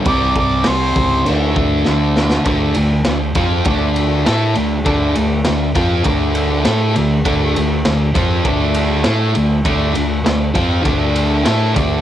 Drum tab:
CC |x---x---x-------|----------------|----------------|----------------|
RD |----------------|x-x-x-x-x-x-x-x-|x-x-x-x-x-x-x-x-|x-x-x-x-x-x-x-x-|
SD |----o-------o-oo|----o-------o---|----o-------o---|----o-------o---|
BD |o-o---o---o-----|o-----o-o-------|o-----o-o-------|o-----o-o-------|

CC |----------------|
RD |x-x-x-x-x-x-x-x-|
SD |----o-------o---|
BD |o-----o-o-----o-|